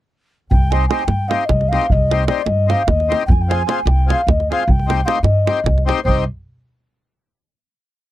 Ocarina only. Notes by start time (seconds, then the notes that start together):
0.51 G5
0.71 G#5
0.88 G#5
1.05 G5
1.28 F5
1.45 D#5
1.69 F5
1.88 D#5 F5
2.27 D5
2.45 D#5
2.70 F5
2.88 D#5
3.26 G5
3.32 G#5
3.41 G5
3.51 G#5
3.71 G#5
3.89 G5
4.12 F5
4.30 D#5
4.52 F5
4.70 G5
5.06 F5
5.24 D#5
6.04 C5